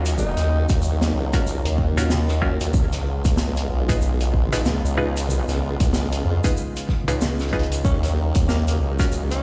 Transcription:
Already playing: D#2 C#3 F#3 A#3 C#4 D#4 F4 F#4 A#4
0.05 closed hi-hat, shaker
0.18 D#4, shaker
0.37 D#2, snare, closed hi-hat, shaker
0.69 D#2, kick, closed hi-hat, shaker
0.82 shaker
1.01 snare, closed hi-hat, shaker
1.14 C#2
1.33 C#4 F4 F#4 A#4, kick, closed hi-hat, shaker
1.47 shaker
1.65 D#2, closed hi-hat, shaker
1.78 kick
1.97 C#4 F4 F#4 A#4, closed hi-hat, shaker
2.10 snare, shaker
2.28 snare, shaker
2.42 C#4 F4 F#4 A#4, kick
2.61 D#2, closed hi-hat, shaker
2.73 C#2 G#3 B3 F4, kick, shaker
2.92 snare, closed hi-hat, shaker
3.25 C#2, kick, closed hi-hat, shaker
3.37 snare, shaker
3.56 closed hi-hat, shaker
3.69 B1
3.89 D#4 F4 G#4 B4, kick, closed hi-hat, shaker
4.01 shaker
4.20 closed hi-hat, shaker
4.34 A#1, kick
4.52 D#4 F4 G#4 B4, snare, closed hi-hat, shaker
4.65 C#2, snare, shaker
4.85 C#2, shaker
4.97 D#4 F4 G#4 B4
5.17 closed hi-hat, shaker
5.28 C2, shaker
5.48 C#2, snare, closed hi-hat, shaker
5.80 C#2, kick, closed hi-hat, shaker
5.93 snare, shaker
6.12 closed hi-hat, shaker
6.25 F2
6.44 D#4 F4 G#4 B4, kick, closed hi-hat, shaker
6.57 shaker
6.76 closed hi-hat, shaker
6.88 kick, snare
7.08 C#2 D#4 F4 G#4 B4, closed hi-hat, shaker
7.21 snare, shaker
7.39 snare, closed hi-hat, shaker
7.42 closed hi-hat
7.49 closed hi-hat
7.53 D#4 F4 G#4 B4, kick, closed hi-hat
7.59 closed hi-hat
7.63 closed hi-hat
7.72 closed hi-hat, shaker
7.85 D#2 F#3 A#3 C#4 D#4, kick, shaker
8.03 C#4, snare, closed hi-hat, shaker
8.34 D#2, kick, closed hi-hat, shaker
8.49 A#3, snare, shaker
8.67 A#3, closed hi-hat, shaker
8.80 C#2
8.99 C#4 F4 F#4 A#4, kick, closed hi-hat, shaker
9.12 shaker
9.31 C#4, closed hi-hat, shaker

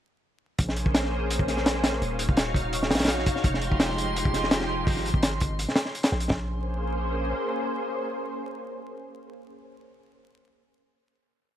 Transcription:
0.59 A#1 A#3 C#4 G#4 C5, kick, closed hi-hat
0.69 snare
0.76 closed hi-hat
0.86 kick
0.94 snare, closed hi-hat
1.04 snare
1.31 closed hi-hat
1.39 kick
1.48 snare, closed hi-hat
1.57 snare
1.66 snare, closed hi-hat
1.74 snare
1.84 snare, closed hi-hat
1.92 snare
2.02 D#1 D#4 F#4 C#5 F5, closed hi-hat
2.19 closed hi-hat
2.29 D#1, kick
2.37 snare, closed hi-hat
2.54 kick, closed hi-hat
2.73 closed hi-hat
2.83 snare
2.91 A#1, snare, closed hi-hat
2.95 snare, closed hi-hat
2.99 snare, closed hi-hat
3.04 snare, closed hi-hat
3.08 snare, closed hi-hat
3.18 snare
3.26 kick, closed hi-hat
3.36 snare
3.44 F1 F3 G#3 D#4 G4 C6, kick, closed hi-hat
3.54 snare
3.62 closed hi-hat
3.72 kick
3.80 snare, closed hi-hat
3.89 snare
3.98 closed hi-hat
4.16 closed hi-hat
4.25 kick
4.34 snare, closed hi-hat
4.43 snare
4.51 snare, closed hi-hat
4.61 snare
4.87 G#1, kick, open hi-hat
4.97 snare
5.06 closed hi-hat
5.14 G#1, kick
5.23 snare, closed hi-hat
5.40 kick, closed hi-hat
5.59 closed hi-hat
5.69 snare
5.76 snare, closed hi-hat
5.85 snare
5.95 closed hi-hat
6.03 snare, closed hi-hat
6.12 A#1, snare
6.20 closed hi-hat
6.30 A#1 A#3 C#4 G#4 C5, kick, snare

